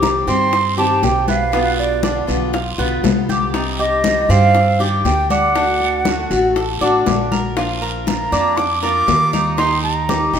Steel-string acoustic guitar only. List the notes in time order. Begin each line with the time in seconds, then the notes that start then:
0.03 D#3 G3 C4 G4
0.27 D#3 G3 C4 G4
0.53 muted steel-string acoustic guitar stroke
0.77 D#3 G3 C4 G4
1.03 D#3 G3 C4 G4
1.52 B2 D3 G3 B3 F4
2.03 D3 G3 B3 F4
2.27 D3 G3 B3 F4
2.53 muted steel-string acoustic guitar stroke
2.78 D3 G3 B3 F4
3.03 D3 G3 B3 F4
3.54 C3 D#3 G3 D4 G4
4.04 D#3 G3 D4 G4
4.30 D#3 G3 D4 G4
4.55 muted steel-string acoustic guitar stroke
4.79 D#3 G3 D4 G4
5.06 G3 D4 G4
5.55 D3 A3 D4 F#4
6.06 D3 A3 D4 F#4
6.31 A3 D4 F#4
6.56 muted steel-string acoustic guitar stroke
6.81 A3 D4 F#4
7.06 D3 A3 D4 F#4
7.57 F3 A#3 D4 F4
8.06 F3 A#3 D4 F4
8.32 A#3 D4 F4
8.58 muted steel-string acoustic guitar stroke
8.82 A#3 D4 F4
9.07 F3 A#3 D4 F4
9.57 D#3 A#3 D#4 G4
10.09 D#3 A#3 D#4 G4
10.33 A#3 D#4 G4